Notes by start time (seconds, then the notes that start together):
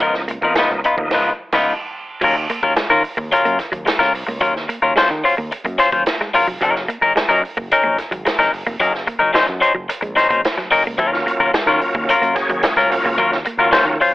Already playing: F3 A#3 B3 D#4
0.00 C#2 F3 B3 D#4 F4 A#4, kick, closed hi-hat
0.14 muted clean electric guitar stroke, snare
0.28 A#3, muted clean electric guitar stroke, closed hi-hat
0.41 F2 F3 A#3 B3 D#4 F4 A#4, muted clean electric guitar stroke, kick
0.55 G#3 B3 D#4 F4 B4, snare, closed hi-hat
0.71 C#2, muted clean electric guitar stroke
0.84 B3 D#4 F4 B4, closed hi-hat
0.96 D#2 F3 A#3 B3 D#4, kick
1.01 muted clean electric guitar stroke
1.11 C#2 F3 A#3 B3 D#4 F4 B4, kick, snare, crash
1.52 C#2 B3 D#4 F4 B4, kick, snare, crash
2.21 D#2 F#3 C#4 F4 A#4, kick, crash
2.37 muted clean electric guitar stroke
2.49 A#3, muted clean electric guitar stroke, closed hi-hat
2.63 D#2 F#3 C#4 F4 A#4, muted clean electric guitar stroke, kick
2.76 G#3, muted fingered electric bass stroke, muted clean electric guitar stroke, snare, closed hi-hat
2.90 D#3 F#3 C#4 F4 A#4, muted clean electric guitar stroke
3.03 muted clean electric guitar stroke, open hi-hat
3.17 D#2 A#3, muted clean electric guitar stroke, kick
3.32 F#3 C#4 F4 A#4, closed hi-hat
3.45 F#2 A#3, closed hi-hat
3.59 muted clean electric guitar stroke, kick, snare, closed hi-hat
3.72 D#2 F#3, muted clean electric guitar stroke, kick, closed hi-hat
3.85 G#3, muted clean electric guitar stroke, snare, closed hi-hat
3.99 C#2 F#3 C#4 F4 A#4, muted clean electric guitar stroke, snare
4.13 C2, muted clean electric guitar stroke, open hi-hat
4.27 C#2 A#3, muted clean electric guitar stroke
4.41 D#2 F#3 C#4 F4 A#4, kick, closed hi-hat
4.55 muted clean electric guitar stroke, snare
4.68 A#3, muted clean electric guitar stroke, closed hi-hat
4.82 D#2 F#3 C#4 F4 A#4, muted clean electric guitar stroke
4.96 F#3 G#3 C#4 F4 C5, muted fingered electric bass stroke, snare, closed hi-hat
5.10 D#3, muted clean electric guitar stroke
5.24 F#3 C#4 F4 C5, open hi-hat
5.37 D#2 A#3, muted clean electric guitar stroke
5.51 muted clean electric guitar stroke, closed hi-hat
5.64 F#2 A#3, muted clean electric guitar stroke, kick, closed hi-hat
5.78 F#3 C#4 F4 C5, muted clean electric guitar stroke, snare, closed hi-hat
5.92 D#2 F#3 C#4 F4 C5, kick, closed hi-hat
6.06 snare, closed hi-hat
6.20 G#3, muted clean electric guitar stroke, snare
6.34 A#1 F#3 C#4 F4 A#4, muted clean electric guitar stroke, open hi-hat
6.47 F1 F#3
6.61 F#1 F#3 C#4 D#4 A#4, kick, closed hi-hat
6.75 muted clean electric guitar stroke, snare
6.88 A#3, muted clean electric guitar stroke, closed hi-hat
7.01 F#1 F#3 C#4 D#4 A#4, muted clean electric guitar stroke, kick
7.15 G#3, muted clean electric guitar stroke, muted fingered electric bass stroke, snare, closed hi-hat
7.29 F#2 F#3 C#4 D#4 A#4, muted clean electric guitar stroke
7.43 muted clean electric guitar stroke, open hi-hat
7.57 F#1 A#3, muted clean electric guitar stroke, kick
7.71 F#3 C#4 D#4 A#4, closed hi-hat
7.84 A#1 A#3
7.98 muted clean electric guitar stroke, kick, snare, closed hi-hat
8.11 G#1 F#3, muted clean electric guitar stroke, kick, closed hi-hat
8.25 G#3, muted clean electric guitar stroke, snare, closed hi-hat
8.39 F#1 F#3 C#4 D#4 A#4, muted clean electric guitar stroke, snare
8.52 F#1, muted clean electric guitar stroke, open hi-hat
8.67 F1 A#3, muted clean electric guitar stroke
8.80 F#1 F#3 C#4 D#4 A#4, kick, closed hi-hat
8.94 muted clean electric guitar stroke, snare
9.07 A#3, muted clean electric guitar stroke, kick, closed hi-hat
9.19 F#1 F#3 C#4 D#4 A#4, muted clean electric guitar stroke
9.33 F#3 C#4 D#4 C5, muted fingered electric bass stroke, snare, closed hi-hat
9.47 F#2, muted clean electric guitar stroke
9.61 F#3 C#4 D#4 C5, closed hi-hat
9.75 F#1 F#3, muted clean electric guitar stroke
9.88 muted clean electric guitar stroke, closed hi-hat
10.01 A#1 G#3, muted clean electric guitar stroke, kick, closed hi-hat
10.16 F#3 C#4 D#4 C5, muted clean electric guitar stroke, snare, closed hi-hat
10.29 G#1 F#3 A#3 C#4 D#4 C5, kick, closed hi-hat
10.45 snare, closed hi-hat
10.58 F#3, muted clean electric guitar stroke, snare
10.71 F#1 F#3 C#4 D#4 A#4, muted clean electric guitar stroke, open hi-hat
10.84 C#2 A#3, muted clean electric guitar stroke
10.98 D#2 F#3 C#4 F4 A#4, kick, closed hi-hat
11.12 F3 A#3 C#4 F4, muted clean electric guitar stroke, snare
11.18 F#3
11.25 A#3, muted clean electric guitar stroke, closed hi-hat
11.40 D#2 F#3 C#4 F4 A#4, muted clean electric guitar stroke, kick
11.53 G#3, muted fingered electric bass stroke, muted clean electric guitar stroke, snare, closed hi-hat
11.66 D#3 F#3 A#3 C#4 F4 A#4, muted clean electric guitar stroke
11.81 muted clean electric guitar stroke, open hi-hat
11.95 D#2 A#3, muted clean electric guitar stroke, kick
12.09 F#3 C#4 F4 A#4, closed hi-hat
12.21 F#2 A#3, closed hi-hat
12.34 F#3 A#3 C#4 G#4, muted clean electric guitar stroke, kick, snare, closed hi-hat
12.49 D#2 F#3, muted clean electric guitar stroke, kick, closed hi-hat
12.63 G#3, muted clean electric guitar stroke, snare, closed hi-hat
12.76 C#2 F#3 C#4 F4 A#4, muted clean electric guitar stroke, snare
12.89 C2 F#3 A#3 C#4 F4, muted clean electric guitar stroke, open hi-hat
13.03 C#2 A#3, muted clean electric guitar stroke
13.18 D#2 F#3 C#4 F4 A#4, kick, closed hi-hat
13.32 muted clean electric guitar stroke, snare
13.45 A#3, muted clean electric guitar stroke, closed hi-hat
13.57 D#2 F#3 A#3 C#4 F4 A#4, muted clean electric guitar stroke
13.71 F#3 G#3 C#4 F4 C5, muted fingered electric bass stroke, snare, closed hi-hat
13.85 D#3, muted clean electric guitar stroke
14.00 F#3 C#4 F4 C5, open hi-hat